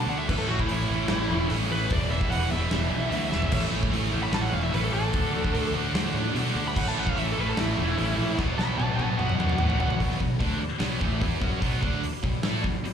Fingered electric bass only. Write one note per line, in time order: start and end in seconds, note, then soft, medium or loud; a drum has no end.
0.06 0.31 D2 medium
0.29 0.45 A1 loud
0.47 0.64 A1 loud
0.69 0.85 A1 loud
0.89 1.05 A1 medium
1.09 1.25 A1 loud
1.30 1.45 E1 loud
1.50 1.66 A1 medium
1.69 1.85 A1 medium
1.91 2.06 E1 loud
2.10 2.26 E1 medium
2.29 2.46 E1 loud
2.52 2.67 E1 medium
2.71 2.87 E1 medium
2.90 3.07 B1 medium
3.11 3.27 D2 medium
3.31 3.47 E1 medium
3.53 3.69 A1 loud
3.71 3.87 A1 medium
3.92 4.08 A1 loud
4.12 4.28 A1 medium
4.31 4.47 A1 medium
4.52 4.69 E1 loud
4.73 4.89 A1 loud
4.93 5.09 A1 loud
5.14 5.30 D2 loud
5.33 5.49 D2 medium
5.54 5.70 D2 medium
5.74 5.90 D2 medium
5.94 6.10 D2 loud
6.14 6.30 A2 medium
6.34 6.51 B2 medium
6.55 6.78 D2 loud
6.76 6.92 A1 loud
6.96 7.12 A1 medium
7.16 7.32 A1 loud
7.38 7.53 A1 medium
7.57 7.73 A1 medium
7.77 7.93 E1 medium
7.97 8.13 A1 loud
8.18 8.33 A#1 loud
8.39 8.55 B1 loud
8.58 8.74 B1 medium
8.78 8.94 B1 medium
8.98 9.14 B1 medium
9.18 9.34 B1 loud
9.38 9.54 F#2 medium
9.58 9.74 A2 medium
9.80 9.96 B1 loud
10.00 10.19 B1 loud
10.21 10.39 B1 medium
10.41 10.59 D2 loud
10.62 muted fingered electric bass stroke soft
10.81 11.00 B1 loud
11.02 11.20 A1 medium
11.21 11.40 E2 loud
11.42 11.61 F#2 medium
11.62 11.81 B1 loud
11.83 12.01 D2 loud
12.01 muted fingered electric bass stroke soft
12.23 12.42 B1 medium
12.44 12.62 A2 loud
12.64 12.83 B1 medium
12.83 muted fingered electric bass stroke soft